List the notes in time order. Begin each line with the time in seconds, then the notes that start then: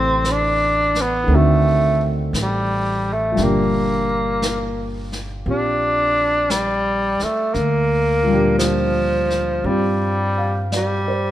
Already playing: A1 C3 E3 A3 C4 G4 B4
0.24 brush sweep, snare, hi-hat pedal
0.31 D4
0.95 snare
1.01 B3
1.24 D2 D#3 A3
1.29 C4 D4, brush sweep
1.35 A3 F#4
2.33 A1, brush sweep, snare, hi-hat pedal
2.42 G3
3.13 A3
3.32 F3 G3
3.37 G1 A#2 D4, brush sweep, snare
3.43 A#3 G4
4.42 brush sweep, snare, hi-hat pedal
5.12 snare
5.46 A#1 C4 F4 G4, brush sweep
5.51 D4
6.50 G3, brush sweep, snare, hi-hat pedal
7.19 muted upright bass stroke, snare
7.24 A3
7.54 D2 A#3, brush sweep, snare
8.23 F3 G3
8.29 A#2 D4
8.34 G4
8.58 F3, brush sweep, snare, hi-hat pedal
9.30 snare
9.64 G2 G3 C4 F4 G4, brush sweep
10.38 F5
10.72 G3 D5, brush sweep, snare, hi-hat pedal
11.08 C5